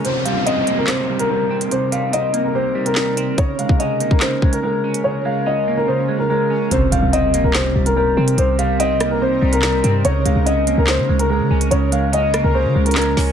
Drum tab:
HH |x---x---x---x---x-----x-------x-|x---x---x---x---------x-x---x---|x---x---x---x---x-----x-------x-|--------------------------------|
CP |----------------x---------------|------------------------x-------|----------------x---------------|--------------------------------|
SD |----------------o---------------|------------------------o-------|----------------o---------------|--------------------------------|
BD |--------------------------------|--------------------------------|o-----o-------o-----o-----------|--------------------------------|

HH |x---x---x---x---x-----x-------x-|x---x---x---x---------x-x---x---|x---x---x---x---x-----x-------x-|x---x---x---x---------xxxx--o---|
CP |----------------x---------------|------------------------x-------|----------------x---------------|------------------------x-------|
SD |----------------o---------------|------------r-----------o-------|----------------o---------------|------------r-----------o---o---|
BD |--------------------------------|--------------------------------|--------------------------------|--------------------------------|